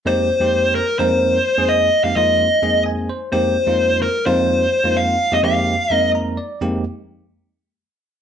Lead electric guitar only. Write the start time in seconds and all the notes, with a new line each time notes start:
0.07 C5
0.75 A#4
0.99 C5
1.69 D#5
2.04 F5
2.16 D#5
3.33 C5
4.02 A#4
4.26 C5
4.97 F5
5.34 D#5
5.45 F5
5.94 D#5